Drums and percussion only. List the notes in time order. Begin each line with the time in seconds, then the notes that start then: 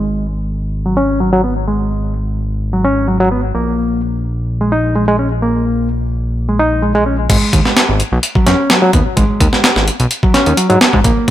7.30 kick, closed hi-hat, crash
7.53 kick, closed hi-hat
7.66 snare
7.77 snare, closed hi-hat
8.00 closed hi-hat
8.23 closed hi-hat
8.35 kick
8.47 snare, closed hi-hat
8.70 snare, closed hi-hat
8.93 kick, closed hi-hat
9.17 kick, closed hi-hat
9.40 kick, closed hi-hat
9.53 snare
9.64 snare, closed hi-hat
9.76 snare
9.88 closed hi-hat
10.00 closed hi-hat
10.11 closed hi-hat
10.23 kick
10.34 snare, closed hi-hat
10.46 closed hi-hat
10.57 closed hi-hat
10.70 closed hi-hat
10.81 snare, closed hi-hat
10.93 kick
11.04 kick, closed hi-hat